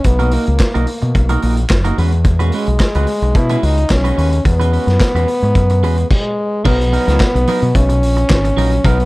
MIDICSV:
0, 0, Header, 1, 6, 480
1, 0, Start_track
1, 0, Key_signature, 5, "major"
1, 0, Tempo, 549451
1, 45, Time_signature, 4, 2, 24, 8
1, 7908, End_track
2, 0, Start_track
2, 0, Title_t, "Clean electric guitar"
2, 0, Program_c, 0, 27
2, 166, Note_on_c, 0, 70, 91
2, 172, Note_on_c, 0, 63, 72
2, 172, Note_on_c, 0, 66, 76
2, 174, Note_on_c, 0, 58, 72
2, 270, Note_off_c, 0, 58, 0
2, 272, Note_off_c, 0, 63, 0
2, 276, Note_off_c, 0, 66, 0
2, 279, Note_off_c, 0, 70, 0
2, 281, Note_on_c, 0, 58, 70
2, 283, Note_on_c, 0, 63, 74
2, 287, Note_on_c, 0, 66, 75
2, 289, Note_on_c, 0, 70, 75
2, 398, Note_off_c, 0, 70, 0
2, 401, Note_off_c, 0, 66, 0
2, 404, Note_off_c, 0, 63, 0
2, 422, Note_off_c, 0, 58, 0
2, 649, Note_on_c, 0, 70, 78
2, 652, Note_on_c, 0, 66, 78
2, 656, Note_on_c, 0, 63, 78
2, 659, Note_on_c, 0, 58, 71
2, 748, Note_off_c, 0, 58, 0
2, 754, Note_off_c, 0, 63, 0
2, 755, Note_off_c, 0, 66, 0
2, 758, Note_off_c, 0, 70, 0
2, 1130, Note_on_c, 0, 70, 94
2, 1135, Note_on_c, 0, 66, 83
2, 1136, Note_on_c, 0, 63, 82
2, 1139, Note_on_c, 0, 58, 69
2, 1227, Note_off_c, 0, 58, 0
2, 1230, Note_off_c, 0, 63, 0
2, 1232, Note_off_c, 0, 66, 0
2, 1237, Note_off_c, 0, 70, 0
2, 1237, Note_on_c, 0, 58, 63
2, 1241, Note_on_c, 0, 63, 58
2, 1243, Note_on_c, 0, 66, 65
2, 1247, Note_on_c, 0, 70, 63
2, 1357, Note_off_c, 0, 70, 0
2, 1362, Note_off_c, 0, 66, 0
2, 1365, Note_off_c, 0, 63, 0
2, 1381, Note_off_c, 0, 58, 0
2, 1611, Note_on_c, 0, 70, 80
2, 1613, Note_on_c, 0, 66, 80
2, 1618, Note_on_c, 0, 63, 78
2, 1621, Note_on_c, 0, 58, 68
2, 1725, Note_off_c, 0, 58, 0
2, 1726, Note_off_c, 0, 66, 0
2, 1728, Note_on_c, 0, 56, 61
2, 1730, Note_off_c, 0, 63, 0
2, 1734, Note_on_c, 0, 61, 75
2, 1735, Note_off_c, 0, 70, 0
2, 1736, Note_on_c, 0, 66, 68
2, 1739, Note_on_c, 0, 71, 75
2, 1849, Note_off_c, 0, 71, 0
2, 1852, Note_off_c, 0, 61, 0
2, 1854, Note_off_c, 0, 66, 0
2, 1867, Note_off_c, 0, 56, 0
2, 2090, Note_on_c, 0, 71, 74
2, 2095, Note_on_c, 0, 66, 75
2, 2097, Note_on_c, 0, 61, 70
2, 2103, Note_on_c, 0, 56, 71
2, 2205, Note_off_c, 0, 56, 0
2, 2207, Note_off_c, 0, 61, 0
2, 2210, Note_off_c, 0, 66, 0
2, 2215, Note_off_c, 0, 71, 0
2, 2216, Note_on_c, 0, 56, 67
2, 2218, Note_on_c, 0, 61, 68
2, 2221, Note_on_c, 0, 66, 64
2, 2226, Note_on_c, 0, 71, 74
2, 2335, Note_off_c, 0, 71, 0
2, 2340, Note_off_c, 0, 66, 0
2, 2343, Note_off_c, 0, 61, 0
2, 2351, Note_off_c, 0, 56, 0
2, 2582, Note_on_c, 0, 71, 82
2, 2588, Note_on_c, 0, 66, 92
2, 2592, Note_on_c, 0, 56, 68
2, 2592, Note_on_c, 0, 61, 70
2, 2687, Note_off_c, 0, 56, 0
2, 2687, Note_off_c, 0, 61, 0
2, 2690, Note_off_c, 0, 71, 0
2, 2691, Note_off_c, 0, 66, 0
2, 3057, Note_on_c, 0, 66, 89
2, 3057, Note_on_c, 0, 71, 91
2, 3062, Note_on_c, 0, 61, 78
2, 3064, Note_on_c, 0, 56, 76
2, 3152, Note_off_c, 0, 56, 0
2, 3157, Note_off_c, 0, 61, 0
2, 3158, Note_off_c, 0, 66, 0
2, 3163, Note_off_c, 0, 71, 0
2, 3163, Note_on_c, 0, 56, 57
2, 3167, Note_on_c, 0, 61, 57
2, 3168, Note_on_c, 0, 66, 59
2, 3174, Note_on_c, 0, 71, 59
2, 3287, Note_off_c, 0, 71, 0
2, 3291, Note_off_c, 0, 66, 0
2, 3292, Note_off_c, 0, 61, 0
2, 3305, Note_off_c, 0, 56, 0
2, 3531, Note_on_c, 0, 71, 86
2, 3536, Note_on_c, 0, 66, 86
2, 3538, Note_on_c, 0, 61, 83
2, 3545, Note_on_c, 0, 56, 72
2, 3633, Note_off_c, 0, 56, 0
2, 3637, Note_off_c, 0, 61, 0
2, 3640, Note_off_c, 0, 66, 0
2, 3643, Note_on_c, 0, 56, 67
2, 3644, Note_off_c, 0, 71, 0
2, 3647, Note_on_c, 0, 61, 70
2, 3651, Note_on_c, 0, 66, 72
2, 3654, Note_on_c, 0, 71, 79
2, 3763, Note_off_c, 0, 71, 0
2, 3766, Note_off_c, 0, 66, 0
2, 3772, Note_off_c, 0, 61, 0
2, 3786, Note_off_c, 0, 56, 0
2, 4015, Note_on_c, 0, 71, 92
2, 4021, Note_on_c, 0, 66, 77
2, 4022, Note_on_c, 0, 61, 76
2, 4027, Note_on_c, 0, 56, 70
2, 4111, Note_off_c, 0, 56, 0
2, 4116, Note_off_c, 0, 61, 0
2, 4119, Note_off_c, 0, 66, 0
2, 4121, Note_on_c, 0, 56, 55
2, 4122, Note_off_c, 0, 71, 0
2, 4126, Note_on_c, 0, 61, 60
2, 4130, Note_on_c, 0, 66, 56
2, 4132, Note_on_c, 0, 71, 69
2, 4252, Note_off_c, 0, 66, 0
2, 4254, Note_off_c, 0, 71, 0
2, 4257, Note_off_c, 0, 61, 0
2, 4265, Note_off_c, 0, 56, 0
2, 4504, Note_on_c, 0, 71, 90
2, 4508, Note_on_c, 0, 66, 87
2, 4509, Note_on_c, 0, 61, 74
2, 4516, Note_on_c, 0, 56, 73
2, 4613, Note_off_c, 0, 56, 0
2, 4613, Note_off_c, 0, 66, 0
2, 4614, Note_off_c, 0, 61, 0
2, 4616, Note_off_c, 0, 71, 0
2, 5095, Note_on_c, 0, 56, 72
2, 5098, Note_on_c, 0, 61, 77
2, 5099, Note_on_c, 0, 66, 90
2, 5103, Note_on_c, 0, 71, 86
2, 5213, Note_off_c, 0, 66, 0
2, 5213, Note_off_c, 0, 71, 0
2, 5220, Note_off_c, 0, 61, 0
2, 5266, Note_off_c, 0, 56, 0
2, 5808, Note_on_c, 0, 54, 96
2, 5814, Note_on_c, 0, 59, 112
2, 5816, Note_on_c, 0, 63, 104
2, 5819, Note_on_c, 0, 70, 127
2, 5925, Note_off_c, 0, 70, 0
2, 5930, Note_off_c, 0, 59, 0
2, 5930, Note_off_c, 0, 63, 0
2, 5982, Note_off_c, 0, 54, 0
2, 6048, Note_on_c, 0, 54, 61
2, 6049, Note_on_c, 0, 59, 70
2, 6053, Note_on_c, 0, 63, 73
2, 6056, Note_on_c, 0, 70, 74
2, 6165, Note_off_c, 0, 70, 0
2, 6171, Note_off_c, 0, 59, 0
2, 6172, Note_off_c, 0, 63, 0
2, 6174, Note_off_c, 0, 54, 0
2, 6175, Note_on_c, 0, 70, 65
2, 6182, Note_on_c, 0, 59, 60
2, 6183, Note_on_c, 0, 63, 61
2, 6184, Note_on_c, 0, 54, 55
2, 6280, Note_off_c, 0, 54, 0
2, 6282, Note_off_c, 0, 59, 0
2, 6286, Note_off_c, 0, 63, 0
2, 6288, Note_off_c, 0, 70, 0
2, 6533, Note_on_c, 0, 54, 93
2, 6534, Note_on_c, 0, 59, 106
2, 6541, Note_on_c, 0, 63, 90
2, 6544, Note_on_c, 0, 70, 100
2, 6646, Note_off_c, 0, 70, 0
2, 6647, Note_off_c, 0, 63, 0
2, 6653, Note_off_c, 0, 59, 0
2, 6704, Note_off_c, 0, 54, 0
2, 7486, Note_on_c, 0, 54, 100
2, 7495, Note_on_c, 0, 59, 100
2, 7497, Note_on_c, 0, 63, 93
2, 7498, Note_on_c, 0, 70, 101
2, 7607, Note_off_c, 0, 70, 0
2, 7612, Note_off_c, 0, 63, 0
2, 7613, Note_off_c, 0, 59, 0
2, 7659, Note_off_c, 0, 54, 0
2, 7729, Note_on_c, 0, 54, 97
2, 7732, Note_on_c, 0, 63, 112
2, 7733, Note_on_c, 0, 59, 111
2, 7737, Note_on_c, 0, 70, 121
2, 7844, Note_off_c, 0, 70, 0
2, 7849, Note_off_c, 0, 63, 0
2, 7850, Note_off_c, 0, 59, 0
2, 7900, Note_off_c, 0, 54, 0
2, 7908, End_track
3, 0, Start_track
3, 0, Title_t, "French horn"
3, 0, Program_c, 1, 60
3, 48, Note_on_c, 1, 59, 90
3, 291, Note_on_c, 1, 58, 83
3, 304, Note_off_c, 1, 59, 0
3, 1250, Note_off_c, 1, 58, 0
3, 2158, Note_on_c, 1, 58, 68
3, 2228, Note_on_c, 1, 56, 93
3, 2241, Note_off_c, 1, 58, 0
3, 2952, Note_on_c, 1, 64, 100
3, 2965, Note_off_c, 1, 56, 0
3, 3189, Note_on_c, 1, 63, 101
3, 3202, Note_off_c, 1, 64, 0
3, 3430, Note_on_c, 1, 61, 106
3, 3443, Note_off_c, 1, 63, 0
3, 3896, Note_off_c, 1, 61, 0
3, 3901, Note_on_c, 1, 59, 100
3, 5302, Note_off_c, 1, 59, 0
3, 5337, Note_on_c, 1, 56, 94
3, 5819, Note_on_c, 1, 59, 104
3, 5832, Note_off_c, 1, 56, 0
3, 6778, Note_on_c, 1, 61, 103
3, 6791, Note_off_c, 1, 59, 0
3, 7742, Note_on_c, 1, 59, 113
3, 7755, Note_off_c, 1, 61, 0
3, 7908, Note_off_c, 1, 59, 0
3, 7908, End_track
4, 0, Start_track
4, 0, Title_t, "Fingered electric bass"
4, 0, Program_c, 2, 33
4, 41, Note_on_c, 2, 35, 87
4, 317, Note_off_c, 2, 35, 0
4, 417, Note_on_c, 2, 37, 84
4, 500, Note_off_c, 2, 37, 0
4, 657, Note_on_c, 2, 35, 80
4, 740, Note_off_c, 2, 35, 0
4, 895, Note_on_c, 2, 47, 77
4, 979, Note_off_c, 2, 47, 0
4, 1005, Note_on_c, 2, 35, 89
4, 1185, Note_off_c, 2, 35, 0
4, 1251, Note_on_c, 2, 34, 101
4, 1429, Note_off_c, 2, 34, 0
4, 1487, Note_on_c, 2, 30, 81
4, 1667, Note_off_c, 2, 30, 0
4, 1730, Note_on_c, 2, 40, 88
4, 2184, Note_off_c, 2, 40, 0
4, 2338, Note_on_c, 2, 35, 81
4, 2422, Note_off_c, 2, 35, 0
4, 2578, Note_on_c, 2, 37, 83
4, 2662, Note_off_c, 2, 37, 0
4, 2814, Note_on_c, 2, 35, 73
4, 2899, Note_off_c, 2, 35, 0
4, 2926, Note_on_c, 2, 47, 109
4, 3107, Note_off_c, 2, 47, 0
4, 3170, Note_on_c, 2, 37, 91
4, 3350, Note_off_c, 2, 37, 0
4, 3411, Note_on_c, 2, 35, 100
4, 3591, Note_off_c, 2, 35, 0
4, 3650, Note_on_c, 2, 39, 102
4, 3830, Note_off_c, 2, 39, 0
4, 3890, Note_on_c, 2, 40, 100
4, 4165, Note_off_c, 2, 40, 0
4, 4255, Note_on_c, 2, 42, 90
4, 4341, Note_off_c, 2, 42, 0
4, 4496, Note_on_c, 2, 40, 78
4, 4582, Note_off_c, 2, 40, 0
4, 4739, Note_on_c, 2, 44, 79
4, 4824, Note_off_c, 2, 44, 0
4, 4849, Note_on_c, 2, 42, 96
4, 5091, Note_off_c, 2, 42, 0
4, 5091, Note_on_c, 2, 40, 90
4, 5271, Note_off_c, 2, 40, 0
4, 5814, Note_on_c, 2, 35, 100
4, 6087, Note_off_c, 2, 35, 0
4, 6181, Note_on_c, 2, 37, 100
4, 6264, Note_off_c, 2, 37, 0
4, 6422, Note_on_c, 2, 35, 91
4, 6505, Note_off_c, 2, 35, 0
4, 6661, Note_on_c, 2, 47, 80
4, 6744, Note_off_c, 2, 47, 0
4, 6771, Note_on_c, 2, 35, 97
4, 7011, Note_off_c, 2, 35, 0
4, 7011, Note_on_c, 2, 34, 98
4, 7189, Note_off_c, 2, 34, 0
4, 7253, Note_on_c, 2, 32, 101
4, 7430, Note_off_c, 2, 32, 0
4, 7488, Note_on_c, 2, 34, 83
4, 7667, Note_off_c, 2, 34, 0
4, 7729, Note_on_c, 2, 35, 103
4, 7908, Note_off_c, 2, 35, 0
4, 7908, End_track
5, 0, Start_track
5, 0, Title_t, "Muted clean electric guitar strokes"
5, 39, Note_on_c, 9, 29, 36
5, 127, Note_off_c, 9, 29, 0
5, 408, Note_on_c, 9, 29, 42
5, 496, Note_off_c, 9, 29, 0
5, 523, Note_on_c, 9, 29, 39
5, 611, Note_off_c, 9, 29, 0
5, 759, Note_on_c, 9, 29, 41
5, 846, Note_off_c, 9, 29, 0
5, 889, Note_on_c, 9, 29, 42
5, 977, Note_off_c, 9, 29, 0
5, 1003, Note_on_c, 9, 29, 34
5, 1090, Note_off_c, 9, 29, 0
5, 1368, Note_on_c, 9, 29, 57
5, 1455, Note_off_c, 9, 29, 0
5, 1479, Note_on_c, 9, 29, 53
5, 1567, Note_off_c, 9, 29, 0
5, 1859, Note_on_c, 9, 29, 46
5, 1947, Note_off_c, 9, 29, 0
5, 1974, Note_on_c, 9, 29, 44
5, 2061, Note_off_c, 9, 29, 0
5, 2345, Note_on_c, 9, 29, 37
5, 2433, Note_off_c, 9, 29, 0
5, 2457, Note_on_c, 9, 29, 42
5, 2544, Note_off_c, 9, 29, 0
5, 2697, Note_on_c, 9, 29, 42
5, 2784, Note_off_c, 9, 29, 0
5, 2821, Note_on_c, 9, 29, 50
5, 2908, Note_off_c, 9, 29, 0
5, 2933, Note_on_c, 9, 29, 36
5, 3020, Note_off_c, 9, 29, 0
5, 3298, Note_on_c, 9, 29, 45
5, 3385, Note_off_c, 9, 29, 0
5, 3408, Note_on_c, 9, 29, 48
5, 3495, Note_off_c, 9, 29, 0
5, 3774, Note_on_c, 9, 29, 39
5, 3861, Note_off_c, 9, 29, 0
5, 3883, Note_on_c, 9, 29, 43
5, 3971, Note_off_c, 9, 29, 0
5, 4263, Note_on_c, 9, 29, 36
5, 4350, Note_off_c, 9, 29, 0
5, 4371, Note_on_c, 9, 29, 43
5, 4459, Note_off_c, 9, 29, 0
5, 4623, Note_on_c, 9, 29, 40
5, 4710, Note_off_c, 9, 29, 0
5, 4753, Note_on_c, 9, 29, 41
5, 4840, Note_off_c, 9, 29, 0
5, 4868, Note_on_c, 9, 29, 38
5, 4955, Note_off_c, 9, 29, 0
5, 4986, Note_on_c, 9, 29, 52
5, 5073, Note_off_c, 9, 29, 0
5, 5223, Note_on_c, 9, 29, 56
5, 5310, Note_off_c, 9, 29, 0
5, 5936, Note_on_c, 9, 29, 42
5, 6023, Note_off_c, 9, 29, 0
5, 6416, Note_on_c, 9, 29, 49
5, 6503, Note_off_c, 9, 29, 0
5, 6656, Note_on_c, 9, 29, 45
5, 6744, Note_off_c, 9, 29, 0
5, 6771, Note_on_c, 9, 29, 44
5, 6859, Note_off_c, 9, 29, 0
5, 6894, Note_on_c, 9, 29, 57
5, 6981, Note_off_c, 9, 29, 0
5, 7135, Note_on_c, 9, 29, 60
5, 7223, Note_off_c, 9, 29, 0
5, 7244, Note_on_c, 9, 29, 46
5, 7332, Note_off_c, 9, 29, 0
5, 7378, Note_on_c, 9, 29, 49
5, 7465, Note_off_c, 9, 29, 0
5, 7617, Note_on_c, 9, 29, 41
5, 7705, Note_off_c, 9, 29, 0
5, 7855, Note_on_c, 9, 29, 50
5, 7908, Note_off_c, 9, 29, 0
5, 7908, End_track
6, 0, Start_track
6, 0, Title_t, "Drums"
6, 35, Note_on_c, 9, 42, 68
6, 40, Note_on_c, 9, 36, 105
6, 122, Note_off_c, 9, 42, 0
6, 128, Note_off_c, 9, 36, 0
6, 169, Note_on_c, 9, 42, 41
6, 256, Note_off_c, 9, 42, 0
6, 273, Note_on_c, 9, 46, 64
6, 360, Note_off_c, 9, 46, 0
6, 407, Note_on_c, 9, 42, 42
6, 494, Note_off_c, 9, 42, 0
6, 521, Note_on_c, 9, 39, 89
6, 521, Note_on_c, 9, 42, 65
6, 522, Note_on_c, 9, 36, 111
6, 523, Note_on_c, 9, 38, 101
6, 608, Note_off_c, 9, 39, 0
6, 608, Note_off_c, 9, 42, 0
6, 610, Note_off_c, 9, 36, 0
6, 610, Note_off_c, 9, 38, 0
6, 655, Note_on_c, 9, 42, 44
6, 742, Note_off_c, 9, 42, 0
6, 757, Note_on_c, 9, 46, 66
6, 845, Note_off_c, 9, 46, 0
6, 891, Note_on_c, 9, 42, 34
6, 979, Note_off_c, 9, 42, 0
6, 1004, Note_on_c, 9, 36, 101
6, 1004, Note_on_c, 9, 42, 53
6, 1091, Note_off_c, 9, 36, 0
6, 1091, Note_off_c, 9, 42, 0
6, 1126, Note_on_c, 9, 42, 45
6, 1213, Note_off_c, 9, 42, 0
6, 1242, Note_on_c, 9, 46, 62
6, 1330, Note_off_c, 9, 46, 0
6, 1371, Note_on_c, 9, 42, 39
6, 1458, Note_off_c, 9, 42, 0
6, 1483, Note_on_c, 9, 39, 96
6, 1483, Note_on_c, 9, 42, 69
6, 1485, Note_on_c, 9, 38, 110
6, 1486, Note_on_c, 9, 36, 113
6, 1570, Note_off_c, 9, 39, 0
6, 1570, Note_off_c, 9, 42, 0
6, 1572, Note_off_c, 9, 38, 0
6, 1574, Note_off_c, 9, 36, 0
6, 1611, Note_on_c, 9, 42, 51
6, 1699, Note_off_c, 9, 42, 0
6, 1730, Note_on_c, 9, 46, 62
6, 1817, Note_off_c, 9, 46, 0
6, 1854, Note_on_c, 9, 42, 50
6, 1941, Note_off_c, 9, 42, 0
6, 1960, Note_on_c, 9, 42, 68
6, 1964, Note_on_c, 9, 36, 111
6, 2047, Note_off_c, 9, 42, 0
6, 2051, Note_off_c, 9, 36, 0
6, 2093, Note_on_c, 9, 42, 42
6, 2181, Note_off_c, 9, 42, 0
6, 2200, Note_on_c, 9, 46, 65
6, 2288, Note_off_c, 9, 46, 0
6, 2329, Note_on_c, 9, 42, 44
6, 2416, Note_off_c, 9, 42, 0
6, 2442, Note_on_c, 9, 39, 80
6, 2442, Note_on_c, 9, 42, 68
6, 2445, Note_on_c, 9, 36, 98
6, 2445, Note_on_c, 9, 38, 101
6, 2530, Note_off_c, 9, 39, 0
6, 2530, Note_off_c, 9, 42, 0
6, 2532, Note_off_c, 9, 36, 0
6, 2532, Note_off_c, 9, 38, 0
6, 2574, Note_on_c, 9, 42, 49
6, 2661, Note_off_c, 9, 42, 0
6, 2679, Note_on_c, 9, 46, 64
6, 2767, Note_off_c, 9, 46, 0
6, 2813, Note_on_c, 9, 42, 37
6, 2900, Note_off_c, 9, 42, 0
6, 2924, Note_on_c, 9, 42, 53
6, 2926, Note_on_c, 9, 36, 118
6, 3011, Note_off_c, 9, 42, 0
6, 3014, Note_off_c, 9, 36, 0
6, 3050, Note_on_c, 9, 42, 48
6, 3138, Note_off_c, 9, 42, 0
6, 3171, Note_on_c, 9, 46, 69
6, 3259, Note_off_c, 9, 46, 0
6, 3298, Note_on_c, 9, 42, 50
6, 3386, Note_off_c, 9, 42, 0
6, 3406, Note_on_c, 9, 42, 70
6, 3407, Note_on_c, 9, 39, 92
6, 3409, Note_on_c, 9, 38, 112
6, 3410, Note_on_c, 9, 36, 111
6, 3494, Note_off_c, 9, 39, 0
6, 3494, Note_off_c, 9, 42, 0
6, 3496, Note_off_c, 9, 38, 0
6, 3497, Note_off_c, 9, 36, 0
6, 3534, Note_on_c, 9, 42, 55
6, 3622, Note_off_c, 9, 42, 0
6, 3655, Note_on_c, 9, 46, 64
6, 3742, Note_off_c, 9, 46, 0
6, 3778, Note_on_c, 9, 42, 52
6, 3865, Note_off_c, 9, 42, 0
6, 3890, Note_on_c, 9, 36, 111
6, 3890, Note_on_c, 9, 42, 65
6, 3977, Note_off_c, 9, 36, 0
6, 3977, Note_off_c, 9, 42, 0
6, 4025, Note_on_c, 9, 42, 46
6, 4113, Note_off_c, 9, 42, 0
6, 4133, Note_on_c, 9, 46, 55
6, 4221, Note_off_c, 9, 46, 0
6, 4262, Note_on_c, 9, 42, 47
6, 4266, Note_on_c, 9, 38, 33
6, 4349, Note_off_c, 9, 42, 0
6, 4353, Note_off_c, 9, 38, 0
6, 4371, Note_on_c, 9, 36, 113
6, 4373, Note_on_c, 9, 39, 89
6, 4373, Note_on_c, 9, 42, 70
6, 4375, Note_on_c, 9, 38, 104
6, 4458, Note_off_c, 9, 36, 0
6, 4460, Note_off_c, 9, 39, 0
6, 4460, Note_off_c, 9, 42, 0
6, 4463, Note_off_c, 9, 38, 0
6, 4508, Note_on_c, 9, 42, 44
6, 4595, Note_off_c, 9, 42, 0
6, 4611, Note_on_c, 9, 46, 64
6, 4698, Note_off_c, 9, 46, 0
6, 4738, Note_on_c, 9, 42, 37
6, 4826, Note_off_c, 9, 42, 0
6, 4848, Note_on_c, 9, 42, 51
6, 4850, Note_on_c, 9, 36, 95
6, 4935, Note_off_c, 9, 42, 0
6, 4938, Note_off_c, 9, 36, 0
6, 4975, Note_on_c, 9, 42, 48
6, 5062, Note_off_c, 9, 42, 0
6, 5097, Note_on_c, 9, 46, 58
6, 5185, Note_off_c, 9, 46, 0
6, 5220, Note_on_c, 9, 42, 46
6, 5307, Note_off_c, 9, 42, 0
6, 5334, Note_on_c, 9, 36, 112
6, 5336, Note_on_c, 9, 49, 94
6, 5421, Note_off_c, 9, 36, 0
6, 5423, Note_off_c, 9, 49, 0
6, 5812, Note_on_c, 9, 36, 126
6, 5812, Note_on_c, 9, 49, 100
6, 5900, Note_off_c, 9, 36, 0
6, 5900, Note_off_c, 9, 49, 0
6, 5949, Note_on_c, 9, 42, 46
6, 6037, Note_off_c, 9, 42, 0
6, 6055, Note_on_c, 9, 46, 66
6, 6143, Note_off_c, 9, 46, 0
6, 6184, Note_on_c, 9, 42, 50
6, 6188, Note_on_c, 9, 38, 38
6, 6271, Note_off_c, 9, 42, 0
6, 6276, Note_off_c, 9, 38, 0
6, 6292, Note_on_c, 9, 36, 109
6, 6292, Note_on_c, 9, 39, 82
6, 6292, Note_on_c, 9, 42, 63
6, 6294, Note_on_c, 9, 38, 114
6, 6379, Note_off_c, 9, 36, 0
6, 6379, Note_off_c, 9, 39, 0
6, 6379, Note_off_c, 9, 42, 0
6, 6382, Note_off_c, 9, 38, 0
6, 6426, Note_on_c, 9, 42, 48
6, 6514, Note_off_c, 9, 42, 0
6, 6529, Note_on_c, 9, 46, 69
6, 6616, Note_off_c, 9, 46, 0
6, 6656, Note_on_c, 9, 42, 40
6, 6744, Note_off_c, 9, 42, 0
6, 6770, Note_on_c, 9, 36, 100
6, 6772, Note_on_c, 9, 42, 64
6, 6857, Note_off_c, 9, 36, 0
6, 6859, Note_off_c, 9, 42, 0
6, 6895, Note_on_c, 9, 42, 48
6, 6983, Note_off_c, 9, 42, 0
6, 7013, Note_on_c, 9, 46, 66
6, 7100, Note_off_c, 9, 46, 0
6, 7144, Note_on_c, 9, 42, 49
6, 7231, Note_off_c, 9, 42, 0
6, 7250, Note_on_c, 9, 39, 99
6, 7250, Note_on_c, 9, 42, 75
6, 7252, Note_on_c, 9, 36, 126
6, 7252, Note_on_c, 9, 38, 107
6, 7337, Note_off_c, 9, 42, 0
6, 7338, Note_off_c, 9, 39, 0
6, 7339, Note_off_c, 9, 36, 0
6, 7340, Note_off_c, 9, 38, 0
6, 7379, Note_on_c, 9, 42, 54
6, 7466, Note_off_c, 9, 42, 0
6, 7495, Note_on_c, 9, 46, 70
6, 7583, Note_off_c, 9, 46, 0
6, 7616, Note_on_c, 9, 42, 50
6, 7703, Note_off_c, 9, 42, 0
6, 7727, Note_on_c, 9, 36, 115
6, 7728, Note_on_c, 9, 42, 71
6, 7814, Note_off_c, 9, 36, 0
6, 7816, Note_off_c, 9, 42, 0
6, 7861, Note_on_c, 9, 42, 45
6, 7908, Note_off_c, 9, 42, 0
6, 7908, End_track
0, 0, End_of_file